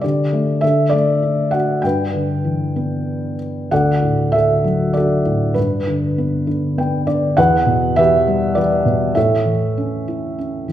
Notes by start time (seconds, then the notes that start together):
0.01 D3 G4 D5
0.33 A3
0.61 D3 A4 E5
0.90 A3 D5
1.23 D4
1.51 F#4 F#5
1.82 G2 G5
1.86 B4
2.14 D3
2.44 E3
2.76 B3
3.71 D2 A4 D5 F#5
4.02 A2
4.32 D3 A4 E5
4.64 F#3
4.93 D3 A4 D5
4.98 F#4
5.25 A2
5.54 G2 D4 B4
5.87 D3
6.18 B3
6.47 D3
6.78 B3 G5
7.07 D3 D5
7.37 E2 B4 F#5
7.66 B2
7.96 E3 G4 B4 E5
8.27 G3
8.55 E3 G4 B4 D5
8.85 B2
9.15 A2 A4 C#5 E5
9.45 E3
9.78 C#4
10.08 E4
10.39 C#4
10.68 E3